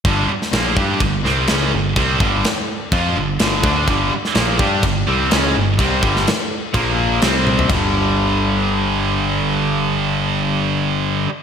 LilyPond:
<<
  \new Staff \with { instrumentName = "Distorted electric guitar" } { \clef bass \time 4/4 \key c \major \tempo 4 = 126 <g, d g>8 r8 <bes, f bes>8 <g d' g'>8 <g, d>8 <c g c'>8 <cis aes cis'>8 <g, d>8 | <c g c'>8 <g, d g>8 r4 <f c' f'>8 <g, d>8 <g, d g>8 <d a d'>8 | <g, d g>8 r8 <bes, f bes>8 <g d' g'>8 <g, d>8 <c g c'>8 <cis aes cis'>8 <g, d>8 | <c g c'>8 <g, d g>8 r4 <bes, f bes>4 <c g c'>4 |
<g, d g>1~ | <g, d g>1 | }
  \new Staff \with { instrumentName = "Distorted electric guitar" } { \clef bass \time 4/4 \key c \major <g, d g>8 r8 <bes, f bes>8 <g d' g'>8 <g, d>8 <c g c'>8 <cis aes cis'>8 <g, d>8 | <c g c'>8 <g, d g>8 r4 <f c' f'>8 <g, d>8 <g, d g>8 <d a d'>8 | <g, d g>8 r8 <bes, f bes>8 <g d' g'>8 <g, d>8 <c g c'>8 <cis aes cis'>8 <g, d>8 | <c g c'>8 <g, d g>8 r4 <bes, f bes>4 <c g c'>4 |
<g, d g>1~ | <g, d g>1 | }
  \new Staff \with { instrumentName = "Overdriven electric guitar" } { \clef bass \time 4/4 \key c \major r1 | r1 | <g, d g>8 r8 <bes, f bes>8 <g d' g'>8 <g, d>8 <c g c'>8 <cis aes cis'>8 <g, d>8 | <c g c'>8 <g, d g>8 r4 <bes, f bes>4 <c g c'>4 |
<g, d g>1~ | <g, d g>1 | }
  \new Staff \with { instrumentName = "Picked electric bass" } { \clef bass \time 4/4 \key c \major g,,8 r8 bes,,8 g,8 g,,8 c,8 cis,8 g,,8 | c,8 g,,8 r4 f,8 g,,8 g,,8 d,8 | g,,8 r8 bes,,8 g,8 g,,8 c,8 cis,8 g,,8 | c,8 g,,8 r4 bes,,4 c,4 |
g,,1~ | g,,1 | }
  \new DrumStaff \with { instrumentName = "Drums" } \drummode { \time 4/4 <cymc bd>8. sn16 <cymc sn>8 bd8 <cymc bd>8 sn8 <cymc sn>4 | <cymc bd>8 bd8 <cymc sn>4 <cymc bd>4 <cymc sn>8 bd8 | <cymc bd>8. sn16 <cymc sn>8 bd8 <cymc bd>4 <cymc sn>4 | <cymc bd>8 bd16 sn16 <cymc sn>4 <cymc bd>4 <cymc sn>8 tommh16 tomfh16 |
<cymc bd tomfh>4 r4 r4 r4 | r4 r4 r4 r4 | }
>>